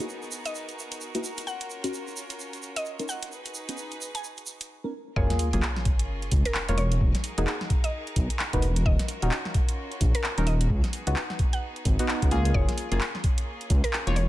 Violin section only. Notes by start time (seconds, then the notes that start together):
Already playing: B3 D#4 F#4 G#4 A#4
1.47 C#4 F4
3.32 D#4 G#4 B4
5.17 C#4 F4 G#4 A#4
6.78 D#4 F#4 G#4
8.86 C#4 F4
10.70 B3 D#4 G#4
12.55 A#3 C#4 F4
14.16 D#4 F#4